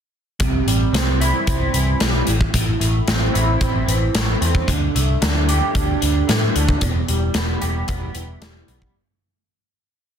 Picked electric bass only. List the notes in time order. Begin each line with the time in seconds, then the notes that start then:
0.40 C2
0.66 A1
0.93 C2
1.47 C2
1.74 C2
2.01 B1
2.28 A1
2.54 A1
2.80 A1
3.08 A1
3.35 A1
3.61 A1
3.88 A1
4.15 A1
4.42 E2
4.68 D2
4.95 C2
5.22 D2
5.75 D2
6.03 D2
6.29 A2
6.56 D2
6.81 E1
7.09 E1
7.35 E1
7.63 E1
7.88 E1
8.15 E1
8.42 E1
8.68 B1